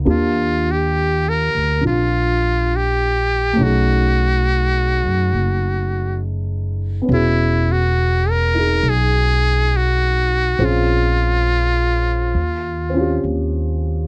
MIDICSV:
0, 0, Header, 1, 4, 480
1, 0, Start_track
1, 0, Tempo, 879765
1, 28, Time_signature, 4, 2, 24, 8
1, 7677, End_track
2, 0, Start_track
2, 0, Title_t, "Muted trumpet"
2, 0, Program_c, 0, 59
2, 56, Note_on_c, 0, 65, 71
2, 390, Note_on_c, 0, 67, 69
2, 398, Note_off_c, 0, 65, 0
2, 703, Note_on_c, 0, 70, 76
2, 712, Note_off_c, 0, 67, 0
2, 1007, Note_off_c, 0, 70, 0
2, 1019, Note_on_c, 0, 65, 71
2, 1506, Note_on_c, 0, 67, 71
2, 1514, Note_off_c, 0, 65, 0
2, 1982, Note_on_c, 0, 66, 72
2, 1990, Note_off_c, 0, 67, 0
2, 3398, Note_off_c, 0, 66, 0
2, 3894, Note_on_c, 0, 64, 74
2, 4211, Note_on_c, 0, 66, 69
2, 4219, Note_off_c, 0, 64, 0
2, 4528, Note_on_c, 0, 70, 76
2, 4537, Note_off_c, 0, 66, 0
2, 4852, Note_on_c, 0, 68, 88
2, 4860, Note_off_c, 0, 70, 0
2, 5327, Note_on_c, 0, 66, 77
2, 5335, Note_off_c, 0, 68, 0
2, 5809, Note_on_c, 0, 65, 73
2, 5818, Note_off_c, 0, 66, 0
2, 7241, Note_off_c, 0, 65, 0
2, 7677, End_track
3, 0, Start_track
3, 0, Title_t, "Upright piano"
3, 0, Program_c, 1, 0
3, 0, Control_c, 1, 64, 127
3, 27, Note_on_c, 1, 58, 40
3, 30, Note_on_c, 1, 62, 40
3, 32, Note_on_c, 1, 65, 37
3, 34, Control_c, 1, 64, 0
3, 36, Note_on_c, 1, 67, 46
3, 147, Control_c, 1, 64, 127
3, 979, Note_off_c, 1, 62, 0
3, 987, Note_on_c, 1, 62, 31
3, 996, Note_off_c, 1, 65, 0
3, 1004, Note_on_c, 1, 65, 32
3, 1926, Note_on_c, 1, 57, 46
3, 1947, Note_off_c, 1, 62, 0
3, 1947, Note_on_c, 1, 61, 42
3, 1949, Note_off_c, 1, 58, 0
3, 1953, Note_off_c, 1, 67, 0
3, 1955, Control_c, 1, 64, 0
3, 1956, Note_off_c, 1, 65, 0
3, 1964, Note_on_c, 1, 63, 43
3, 1983, Note_on_c, 1, 68, 48
3, 2059, Control_c, 1, 64, 127
3, 3828, Note_on_c, 1, 59, 38
3, 3841, Note_off_c, 1, 61, 0
3, 3847, Note_off_c, 1, 57, 0
3, 3849, Note_on_c, 1, 61, 36
3, 3866, Note_off_c, 1, 63, 0
3, 3867, Control_c, 1, 64, 0
3, 3870, Note_on_c, 1, 66, 37
3, 3876, Note_off_c, 1, 68, 0
3, 3889, Note_on_c, 1, 68, 44
3, 3947, Control_c, 1, 64, 127
3, 4663, Note_on_c, 1, 63, 38
3, 4675, Note_off_c, 1, 68, 0
3, 4683, Note_on_c, 1, 68, 42
3, 5760, Note_off_c, 1, 59, 0
3, 5770, Note_off_c, 1, 61, 0
3, 5775, Note_off_c, 1, 63, 0
3, 5776, Note_off_c, 1, 68, 0
3, 5777, Note_on_c, 1, 60, 46
3, 5778, Note_on_c, 1, 61, 41
3, 5781, Note_off_c, 1, 66, 0
3, 5781, Control_c, 1, 64, 0
3, 5784, Note_on_c, 1, 65, 42
3, 5784, Note_on_c, 1, 68, 52
3, 5892, Control_c, 1, 64, 127
3, 6741, Note_off_c, 1, 60, 0
3, 6741, Note_off_c, 1, 61, 0
3, 6744, Note_off_c, 1, 65, 0
3, 6744, Note_off_c, 1, 68, 0
3, 6748, Control_c, 1, 64, 0
3, 6836, Control_c, 1, 64, 127
3, 7037, Note_on_c, 1, 60, 43
3, 7056, Note_on_c, 1, 61, 42
3, 7072, Note_on_c, 1, 65, 40
3, 7098, Note_on_c, 1, 67, 48
3, 7677, Note_off_c, 1, 60, 0
3, 7677, Note_off_c, 1, 61, 0
3, 7677, Note_off_c, 1, 65, 0
3, 7677, Note_off_c, 1, 67, 0
3, 7677, End_track
4, 0, Start_track
4, 0, Title_t, "Upright bass"
4, 0, Program_c, 2, 32
4, 33, Note_on_c, 2, 39, 66
4, 817, Note_off_c, 2, 39, 0
4, 844, Note_on_c, 2, 38, 52
4, 984, Note_off_c, 2, 38, 0
4, 996, Note_on_c, 2, 34, 62
4, 1930, Note_off_c, 2, 34, 0
4, 1956, Note_on_c, 2, 35, 65
4, 2733, Note_off_c, 2, 35, 0
4, 2751, Note_on_c, 2, 42, 52
4, 2894, Note_off_c, 2, 42, 0
4, 2908, Note_on_c, 2, 30, 63
4, 3839, Note_off_c, 2, 30, 0
4, 3867, Note_on_c, 2, 28, 72
4, 4799, Note_off_c, 2, 28, 0
4, 4818, Note_on_c, 2, 35, 68
4, 5754, Note_off_c, 2, 35, 0
4, 5777, Note_on_c, 2, 34, 71
4, 6719, Note_off_c, 2, 34, 0
4, 6735, Note_on_c, 2, 39, 62
4, 7200, Note_off_c, 2, 39, 0
4, 7222, Note_on_c, 2, 39, 51
4, 7677, Note_off_c, 2, 39, 0
4, 7677, End_track
0, 0, End_of_file